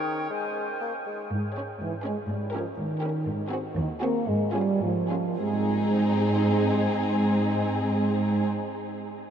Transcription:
Already playing: D#3 C#5 G5
0.30 G#3 C5 G#5
0.81 A#3
1.07 G#3
1.31 G#2
1.56 C#4 G#4 C#5
1.81 G#2 E3
2.04 G#3 C#4 G#4 C#5
2.29 G#2 G3
2.54 F3 C#4 G4 A#4
2.78 G#2 D#3
3.02 C#4 G4 A#4
3.27 G#2
3.51 C4 F#4 G#4
3.77 D#2 D#3
4.01 A#3 C4 F#4 G#4
4.27 G#2 G#3
4.54 G3 C#4 F4 G#4
4.82 G#2 F3
5.10 C#4 F4 G#4
5.39 G#2 G#3 C4 D#4 G#4

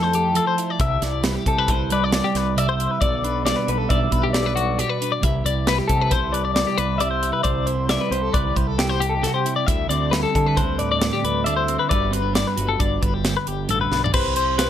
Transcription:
Already playing: F2 F3 A3 E4 F4 A4
0.03 C5
0.13 G4, closed hi-hat
0.34 F3 F4 A4, closed hi-hat
0.47 C5
0.58 E4, closed hi-hat
0.70 D5
0.79 C2 C3 G4 E5, kick, closed hi-hat
1.02 C2 E4 D5, snare, closed hi-hat
1.23 G3 B4, snare, closed hi-hat
1.36 G4
1.46 C3 G4 A4, kick, closed hi-hat
1.58 B4
1.68 C2 E4 B4 C5, kick, closed hi-hat
1.90 G3 B4 D5, closed hi-hat
2.04 D5
2.12 D5, snare, closed hi-hat
2.24 G4
2.35 C2 B4, snare, closed hi-hat
2.57 C3 G4 D5 E5, closed hi-hat
2.69 C5
2.80 E4, closed hi-hat
2.91 B4
3.01 B1 B2 F#4 D5, kick, closed hi-hat
3.24 D4 B4, closed hi-hat
3.45 G3 D5, snare, closed hi-hat
3.56 B4
3.67 B1 F#4 B4, closed hi-hat
3.78 A4
3.89 B1 D4 D5 E5, kick, closed hi-hat
4.11 B1 B2 B4, kick, closed hi-hat
4.24 G4
4.33 D5, snare, closed hi-hat
4.46 B4
4.56 F#4, closed hi-hat
4.78 B2 F#4 G4, closed hi-hat
4.89 B4
5.02 D4, closed hi-hat
5.12 D5
5.21 C2 C3 G3 E4 G4 B4 E5, kick, closed hi-hat
5.44 C2 E4 D5, closed hi-hat
5.67 G3 B4, snare, closed hi-hat
5.79 G4
5.88 C3 G4 A4, kick, closed hi-hat
6.02 B4
6.11 C2 E4 B4 C5, kick, closed hi-hat
6.32 G3 B4 D5, closed hi-hat
6.45 D5
6.54 D5, snare, closed hi-hat
6.67 G4
6.78 C2 B4, closed hi-hat
6.98 C3 G4 D5 E5, closed hi-hat
7.11 C5
7.23 E4, closed hi-hat
7.33 B4
7.43 C2 C3 G4 C5 D5, kick, closed hi-hat
7.67 E4 C5, closed hi-hat
7.89 G3 D5 E5, snare, closed hi-hat
8.01 B4
8.11 C2 G4 C5, closed hi-hat
8.22 A4
8.33 C2 E4 B4 D5, kick, closed hi-hat
8.56 C2 G3 C5, kick, closed hi-hat
8.67 A4
8.78 G4, snare, closed hi-hat
8.89 C5
9.00 G4, closed hi-hat
9.09 A4
9.18 G4
9.22 C3 G4 A4, snare, closed hi-hat
9.27 F#4
9.34 G4 C5
9.45 E4, closed hi-hat
9.56 D5
9.67 D2 D3 E4 E5, kick, closed hi-hat
9.89 D2 C4 D5, closed hi-hat
10.11 G3 B4, snare, closed hi-hat
10.23 A4
10.35 D3 E4 A4, kick, closed hi-hat
10.47 B4
10.57 D2 C4 B4 C5, kick, closed hi-hat
10.79 A2 B4 D5, closed hi-hat
10.92 D5
10.99 D5, snare, closed hi-hat
11.13 G4
11.24 D2 B4, closed hi-hat
11.44 D3 D4 D5 E5, closed hi-hat
11.57 E4 C5
11.68 C4, closed hi-hat
11.79 B4
11.89 G1 G2 G3 D4 F#4 B4 D5, kick, closed hi-hat
12.11 C4 B4, closed hi-hat
12.22 D4
12.33 G3 D5, snare, closed hi-hat
12.47 B4
12.56 G1 F#4, closed hi-hat
12.69 A4
12.79 G1 D4 D5, kick, closed hi-hat
13.01 G1 D3 B4, kick, closed hi-hat
13.14 G4
13.25 snare, closed hi-hat
13.37 B4
13.47 G1 G4, closed hi-hat
13.68 A1 G2 F#4 A4, closed hi-hat
13.81 B4
13.91 B1 D4, snare
14.04 D5, floor tom
14.13 C2 C3 G4 B4 C5, kick, crash
14.36 C5, closed hi-hat
14.58 G4 B4, snare, closed hi-hat

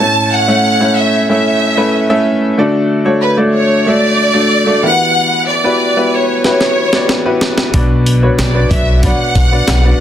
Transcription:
Already playing: A5
0.00 A2 A3 C#4 E4 A4 C#5
0.33 F#5
0.48 A3 C#4 E4 A4 C#5
0.80 A3 C#4 E4 A4 C#5
0.98 E5
1.29 A3 C#4 E4 A4 E5
1.77 A3 C#4 E4 A4 B4
2.10 A3 C#4 E4 A4 E5
2.58 D3 A3 D4 F#4 A4 D5
3.05 A3 D4 F#4 A4 C#5
3.22 B4
3.37 A3 D4 F#4 A4 D5
3.54 C#5
3.86 A3 D4 F#4 A4 D5 E5
4.34 A3 D4 F#4 A4 D5
4.66 A3 D4 F#4 A4 D5
4.83 E3 B3 E4 F#4 G4 A#4 F#5
4.90 B4
5.48 D5
5.64 B3 E4 F#4 G4 B4
5.97 B3 E4 F#4 G4 B4
6.13 C#5
6.44 B3 E4 F#4 G4 B4 C#5, snare
6.61 snare
6.93 B3 E4 F#4 G4 D5, snare
7.09 snare
7.25 B3 E4 F#4 G4 B4
7.41 snare
7.58 snare
7.74 B1 B2 B3 D4 F#4 B4 D5, kick, open hi-hat
8.06 open hi-hat
8.23 B3 D4 F#4 B4 C#5
8.38 B1 D5, snare, clap, open hi-hat
8.54 B3 D4 F#4 B4 D5
8.71 B1 E5, kick, open hi-hat
9.03 B3 D4 F#4 B4 D5 F#5, kick, open hi-hat
9.35 B1, kick, open hi-hat
9.52 B3 D4 F#4 B4 D5
9.68 B1, snare, clap, open hi-hat
9.85 B3 D4 F#4 B4 D5

